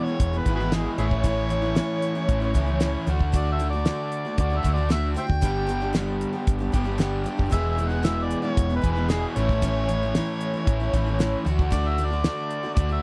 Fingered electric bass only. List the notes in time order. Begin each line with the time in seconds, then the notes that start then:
0.20 E1
0.46 G#1
0.98 A1
2.29 A1
2.55 C#2
3.07 D2
4.38 D2
4.64 D2
5.30 D2
5.43 G1
6.48 G1
6.74 G1
7.40 F#1
7.52 E1
8.57 E1
8.83 E1
9.36 A1
10.67 A1
10.93 A1
11.46 D2
12.77 D2